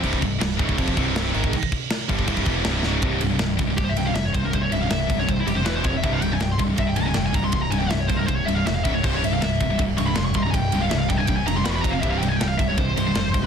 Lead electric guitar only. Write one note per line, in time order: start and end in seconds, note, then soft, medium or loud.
3.77 3.84 G4 medium
3.84 3.90 C5 medium
3.89 3.96 E5 medium
3.97 4.06 G5 loud
4.06 4.14 F5 medium
4.15 4.24 E5 medium
4.25 4.34 C#5 medium
4.35 4.45 C5 medium
4.45 4.53 A#4 medium
4.55 4.62 C5 medium
4.62 4.71 C#5 medium
4.72 4.81 E5 medium
4.82 4.89 F5 loud
4.89 5.18 E5 medium
5.19 5.30 C#5 medium
5.30 5.38 C5 medium
5.40 5.48 E4 medium
5.47 5.56 G4 medium
5.57 5.65 C5 loud
5.65 5.74 B4 medium
5.76 5.85 C5 medium
5.86 5.94 C#5 medium
5.97 6.04 E5 medium
6.05 6.13 E5 medium
6.13 6.22 F5 medium
6.22 6.33 G5 loud
6.33 6.41 G#5 loud
6.43 6.51 G5 medium
6.52 6.57 C6 loud
6.79 6.88 E5 loud
6.87 6.96 G5 medium
6.96 7.06 A#5 loud
7.05 7.14 G#5 medium
7.15 7.24 G5 medium
7.26 7.35 G#5 loud
7.35 7.44 A#5 loud
7.44 7.52 C6 medium
7.53 7.62 C6 medium
7.62 7.71 A#5 medium
7.71 7.78 G#5 loud
7.79 7.90 G5 medium
7.90 8.00 E5 loud
8.00 8.09 C#5 medium
8.07 8.17 C5 medium
8.17 8.26 A#4 medium
8.26 8.36 C5 medium
8.36 8.46 C#5 medium
8.45 8.55 E5 loud
8.55 8.65 F5 loud
8.67 8.75 E5 medium
8.75 8.84 F5 loud
8.84 8.94 E5 loud
8.94 9.03 C#5 medium
9.05 9.14 C5 medium
9.15 9.23 C#5 medium
9.24 9.33 E5 loud
9.33 9.42 F5 loud
9.42 9.79 E5 medium
9.98 10.06 C#6 loud
10.06 10.15 B5 loud
10.15 10.25 C6 medium
10.25 10.34 C#6 loud
10.36 10.41 C6 loud
10.43 10.48 A#5 loud
10.50 10.82 G5 medium
10.50 10.54 G#5 medium
10.82 10.90 F5 medium
10.90 10.99 E5 medium
10.99 11.09 F5 medium
11.09 11.17 G5 loud
11.17 11.27 G#5 loud
11.27 11.36 G5 loud
11.36 11.46 G#5 loud
11.47 11.56 A#5 loud
11.57 11.65 C6 loud
11.65 11.70 B5 loud
11.70 11.75 C#6 loud
11.75 11.81 B5 loud
11.82 11.92 A#5 loud
11.91 12.02 F5 medium
12.01 12.11 E5 medium
12.09 12.18 F5 medium
12.18 12.28 G5 loud
12.28 12.37 G#5 loud
12.37 12.48 G5 medium
12.48 12.58 F5 medium
12.57 12.68 E5 loud
12.68 12.78 C#5 medium
12.78 13.46 C5 medium